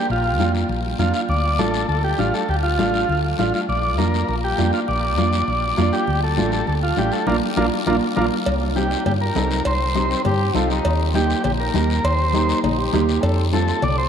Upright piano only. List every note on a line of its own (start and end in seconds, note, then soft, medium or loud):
0.39 0.60 A#3 medium
0.39 0.60 D4 medium
0.39 0.61 F4 medium
0.99 1.20 A#3 medium
0.99 1.20 D4 medium
0.99 1.20 F4 medium
1.58 1.80 A3 medium
1.58 1.80 D4 medium
1.58 1.80 F4 medium
2.18 2.39 A3 medium
2.18 2.40 D4 medium
2.18 2.40 G4 medium
2.78 2.99 A3 medium
2.78 2.99 D4 medium
2.78 3.00 F4 medium
3.38 3.59 A3 medium
3.38 3.60 D4 medium
3.38 3.60 F4 medium
3.98 4.19 A#3 medium
3.98 4.19 D4 medium
3.98 4.19 F4 medium
4.58 4.79 A#3 medium
4.58 4.79 D4 medium
4.58 4.79 F4 medium
5.17 5.39 A#3 medium
5.17 5.39 D4 medium
5.17 5.39 F4 medium
5.77 5.98 A#3 medium
5.77 5.99 D4 medium
5.77 5.99 F4 medium
6.37 6.58 A3 medium
6.37 6.58 D4 medium
6.37 6.59 F4 medium
6.97 7.18 A3 medium
6.97 7.18 D4 medium
6.97 7.18 F4 medium
7.27 7.37 A#3 medium
7.27 7.37 D4 medium
7.27 7.37 F4 medium
7.57 7.67 A#3 medium
7.57 7.67 D4 medium
7.57 7.67 F4 medium
7.87 7.97 A#3 medium
7.87 7.97 D4 medium
7.87 7.97 F4 medium
8.16 8.26 A#3 medium
8.16 8.26 D4 medium
8.16 8.26 F4 medium
8.76 8.97 C4 medium
8.76 8.97 D#4 medium
8.76 8.97 G4 medium
9.35 9.56 C4 medium
9.35 9.57 D#4 medium
9.35 9.57 A4 medium
9.95 10.16 C4 medium
9.95 10.16 D#4 medium
9.95 10.17 G4 medium
10.55 10.76 C4 medium
10.55 10.76 D#4 medium
10.55 10.76 A4 medium
11.14 11.35 A#3 medium
11.14 11.36 D#4 medium
11.14 11.36 G4 medium
11.75 11.96 A#3 medium
11.75 11.96 D#4 medium
11.75 11.96 G4 medium
12.34 12.55 A#3 medium
12.34 12.55 D#4 medium
12.34 12.55 G4 medium
12.93 13.14 A#3 medium
12.93 13.14 D#4 medium
12.93 13.14 G4 medium
13.53 13.74 C4 medium
13.53 13.74 F4 medium
13.53 13.74 A4 medium